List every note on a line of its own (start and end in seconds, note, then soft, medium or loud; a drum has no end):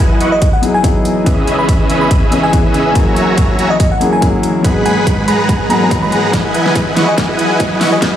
0.00 2.92 E3 medium
0.00 0.60 F#3 medium
0.00 0.60 B3 medium
0.00 2.92 B3 medium
0.00 0.18 E4 medium
0.00 0.61 E4 medium
0.00 0.62 G#4 medium
0.00 2.92 G#4 medium
0.00 0.18 B4 medium
0.00 0.18 D#5 medium
0.00 0.61 D#5 medium
0.00 1.25 D#5 medium
0.00 0.18 F#5 medium
0.00 0.18 G#5 medium
0.00 riser medium
0.21 0.32 E4 medium
0.21 0.32 B4 medium
0.21 0.32 D#5 medium
0.21 0.32 F#5 medium
0.21 0.32 C#6 medium
0.21 closed hi-hat medium
0.32 0.38 D#5 medium
0.42 0.49 D#5 medium
0.42 kick loud
0.42 closed hi-hat medium
0.53 0.72 F#5 medium
0.62 0.81 F#3 medium
0.62 0.82 B3 medium
0.62 0.82 D#4 medium
0.62 0.82 E4 medium
0.62 0.82 G#4 medium
0.62 closed hi-hat medium
0.74 0.88 G#5 medium
0.83 1.24 F#3 medium
0.83 1.24 B3 medium
0.83 1.24 D#4 medium
0.83 1.24 E4 medium
0.83 1.25 G#4 loud
0.83 kick medium
0.83 closed hi-hat medium
1.05 closed hi-hat medium
1.24 2.29 E3 medium
1.24 2.29 B3 medium
1.24 1.87 C#4 medium
1.24 2.30 C#4 medium
1.24 1.87 G#4 medium
1.24 1.87 B4 medium
1.24 4.61 C#5 medium
1.24 1.87 D#5 medium
1.24 1.87 E5 loud
1.24 kick loud
1.24 closed hi-hat medium
1.28 2.31 G#4 loud
1.47 closed hi-hat medium
1.59 1.65 B5 medium
1.69 1.76 B5 medium
1.69 kick medium
1.69 closed hi-hat medium
1.90 2.93 C#4 medium
1.90 2.93 G#4 medium
1.90 2.93 B4 medium
1.90 2.93 D#5 medium
1.90 2.93 E5 loud
1.90 closed hi-hat medium
2.01 2.15 B5 medium
2.11 kick loud
2.11 closed hi-hat medium
2.31 2.50 E3 medium
2.31 2.51 B3 medium
2.31 2.51 C#4 medium
2.31 2.51 D#4 medium
2.31 2.51 G#4 medium
2.31 closed hi-hat medium
2.43 3.00 G#5 medium
2.52 2.93 E3 medium
2.52 2.93 B3 medium
2.52 2.93 C#4 medium
2.52 2.94 G#4 loud
2.52 kick loud
2.52 closed hi-hat medium
2.74 closed hi-hat medium
2.94 4.63 E3 medium
2.94 3.98 F#3 medium
2.94 3.98 A#3 medium
2.94 4.63 A#3 medium
2.94 3.99 C#4 medium
2.94 3.99 E4 medium
2.94 3.56 F#4 medium
2.94 4.63 F#4 medium
2.94 4.00 G#4 medium
2.94 3.56 C#5 medium
2.94 3.56 E5 medium
2.94 3.56 G#5 medium
2.94 3.56 A#5 medium
2.94 kick loud
2.94 closed hi-hat medium
3.16 closed hi-hat medium
3.38 kick medium
3.38 closed hi-hat medium
3.59 3.70 F#4 medium
3.59 3.70 C#5 medium
3.59 3.70 E5 medium
3.59 3.70 G#5 medium
3.59 3.70 A#5 medium
3.59 closed hi-hat medium
3.70 3.76 D#5 medium
3.80 3.87 D#5 medium
3.80 kick loud
3.80 closed hi-hat medium
3.92 4.10 F#5 medium
4.00 4.19 F#3 medium
4.00 4.20 A#3 medium
4.00 4.20 C#4 medium
4.00 4.20 E4 medium
4.00 4.20 G#4 medium
4.00 closed hi-hat medium
4.13 4.26 G#5 medium
4.21 4.61 F#3 loud
4.21 4.62 A#3 medium
4.21 4.62 C#4 medium
4.21 4.62 E4 medium
4.21 4.63 G#4 loud
4.21 kick loud
4.21 closed hi-hat medium
4.43 closed hi-hat medium
4.63 5.67 F#3 medium
4.63 6.32 F#3 medium
4.63 5.25 G#3 medium
4.63 5.68 B3 medium
4.63 5.68 D#4 medium
4.63 8.16 G#4 medium
4.63 5.25 G#4 medium
4.63 5.69 G#4 loud
4.63 5.25 B4 medium
4.63 7.99 D#5 medium
4.63 5.25 F#5 medium
4.63 5.25 B5 loud
4.63 kick loud
4.63 closed hi-hat medium
4.86 5.00 G#5 medium
4.86 closed hi-hat medium
5.07 kick medium
5.07 closed hi-hat medium
5.28 5.68 G#3 loud
5.28 5.68 G#4 medium
5.28 5.68 B4 medium
5.28 5.68 F#5 medium
5.28 5.68 A#5 loud
5.28 5.35 B5 medium
5.28 closed hi-hat medium
5.39 5.45 B5 medium
5.49 kick loud
5.49 closed hi-hat medium
5.69 5.78 F#3 medium
5.69 6.31 G#3 loud
5.69 5.78 A#3 medium
5.69 5.79 B3 medium
5.69 5.79 D#4 medium
5.69 6.31 G#4 medium
5.69 5.79 A#4 medium
5.69 6.31 B4 medium
5.69 6.31 F#5 medium
5.69 6.31 A#5 loud
5.69 5.85 B5 medium
5.69 closed hi-hat medium
5.79 6.30 F#3 medium
5.79 6.31 B3 medium
5.79 6.32 D#4 medium
5.79 6.32 A#5 medium
5.91 kick loud
5.91 closed hi-hat medium
6.03 6.09 B5 medium
6.12 6.20 B5 medium
6.12 closed hi-hat medium
6.33 8.01 E3 medium
6.33 6.94 E4 medium
6.33 6.94 B4 medium
6.33 6.94 D#5 medium
6.33 6.94 F#5 medium
6.33 6.94 G#5 medium
6.33 kick medium
6.33 snare soft
6.33 closed hi-hat medium
6.45 6.53 G#4 medium
6.54 closed hi-hat medium
6.66 6.71 B4 medium
6.66 snare soft
6.75 6.79 D#5 medium
6.75 kick medium
6.75 closed hi-hat medium
6.97 7.08 E4 medium
6.97 7.08 B4 medium
6.97 7.08 D#5 medium
6.97 7.03 E5 medium
6.97 7.08 F#5 medium
6.97 7.08 C#6 medium
6.97 snare medium
6.97 closed hi-hat medium
7.08 7.14 D#5 medium
7.08 7.13 G#5 medium
7.18 7.79 E4 medium
7.18 7.79 B4 medium
7.18 7.79 D#5 medium
7.18 7.79 F#5 medium
7.18 7.79 G#5 medium
7.18 kick loud
7.18 snare medium
7.18 closed hi-hat medium
7.29 7.37 G#4 medium
7.39 closed hi-hat medium
7.50 7.56 B4 medium
7.60 7.64 D#5 medium
7.60 kick medium
7.60 closed hi-hat medium
7.81 7.93 E4 medium
7.81 7.93 B4 medium
7.81 7.93 D#5 medium
7.81 7.87 E5 medium
7.81 7.93 F#5 medium
7.81 7.93 C#6 medium
7.81 snare medium
7.81 open hi-hat medium
7.92 7.99 D#5 medium
7.92 7.98 G#5 medium
8.02 8.16 E4 medium
8.02 8.16 B4 medium
8.02 8.16 D#5 medium
8.02 8.16 F#5 medium
8.02 8.16 G#5 medium
8.02 kick loud
8.02 snare medium
8.02 closed hi-hat medium
8.13 8.16 G#4 medium